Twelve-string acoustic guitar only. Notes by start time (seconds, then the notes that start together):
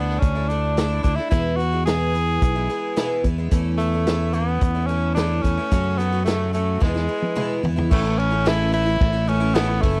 Already playing: D3 A3 D4 E4
0.35 A3 D4 E4
0.50 D3 A3 D4 E4
0.77 D3 A3 D4 E4
1.03 D3 A3 D4 E4
1.18 A3 D4 E4
1.31 E2 B2 E3 G#3 B3 E4
1.59 E3 G#3 B3 E4
1.72 E3 G#3 B3 E4
1.86 E2 B2 E3 G#3 B3 E4
2.13 E3 G#3 B3 E4
2.55 E3 G#3 B3 E4
2.69 E3 G#3 B3 E4
2.96 E2 B2 E3 G#3 B3 E4
3.24 E3 G#3 B3 E4
3.38 E3 G#3 B3 E4
3.51 E3 A3 C#4 E4
3.80 E3 A3 C#4 E4
3.94 A3 C#4 E4
4.07 E3 A3 C#4 E4
4.33 E3 A3 C#4 E4
4.75 A3 C#4 E4
4.88 E3 A3 C#4 E4
5.16 E3 A3 C#4 E4
5.43 E3 A3 C#4 E4
5.57 A3 C#4 E4
5.71 F#2 C#3 F#3 A3 C#4 F#4
5.98 F#3 A3 C#4 F#4
6.13 F#3 A3 C#4 F#4
6.26 F#2 C#3 F#3 A3 C#4 F#4
6.53 F#3 A3 C#4 F#4
6.80 E2 B2 E3 G#3 B3 E4
6.94 E3 G#3 B3 E4
7.08 E3 G#3 B3 E4
7.35 E2 B2 E3 G#3 B3 E4
7.63 E3 G#3 B3 E4
7.76 E3 G#3 B3 E4
7.91 A2 E3 A3 C#4 E4
8.05 A3 C#4 E4
8.31 A3 C#4 E4
8.45 A2 E3 A3 C#4 E4
8.72 E3 A3 C#4 E4
8.85 A3 C#4 E4
9.13 A3 C#4 E4
9.27 E3 A3 C#4 E4
9.40 A3 C#4 E4
9.55 A2 E3 A3 C#4 E4
9.69 A3 C#4 E4
9.83 E3 A3 C#4 E4